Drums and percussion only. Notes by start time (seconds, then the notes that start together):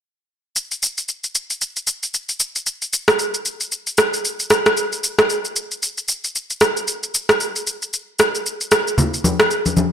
0.56 shaker
0.71 shaker
0.83 shaker
0.98 shaker
1.08 shaker
1.24 shaker
1.35 shaker
1.50 shaker
1.61 shaker
1.76 shaker
1.87 shaker
2.03 shaker
2.14 shaker
2.29 shaker
2.40 shaker
2.56 shaker
2.66 shaker
2.82 shaker
2.93 shaker
3.08 cross-stick, shaker
3.19 shaker
3.34 shaker
3.45 shaker
3.60 shaker
3.72 shaker
3.87 shaker
3.98 cross-stick, shaker
4.13 shaker
4.25 shaker
4.40 shaker
4.50 cross-stick, shaker
4.66 cross-stick, shaker
4.77 shaker
4.92 shaker
5.04 shaker
5.19 cross-stick, shaker
5.30 shaker
5.45 shaker
5.56 shaker
5.71 shaker
5.83 shaker
5.98 shaker
6.08 shaker
6.24 shaker
6.35 shaker
6.50 shaker
6.61 cross-stick, shaker
6.77 shaker
6.88 shaker
7.03 shaker
7.14 shaker
7.29 cross-stick, shaker
7.40 shaker
7.56 shaker
7.67 shaker
7.82 shaker
7.93 shaker
8.19 cross-stick, shaker
8.35 shaker
8.46 shaker
8.61 shaker
8.72 cross-stick, shaker
8.87 shaker
8.98 low conga, shaker
9.14 shaker
9.24 high conga, shaker
9.40 cross-stick, shaker
9.51 shaker
9.66 high conga, shaker
9.77 high conga, shaker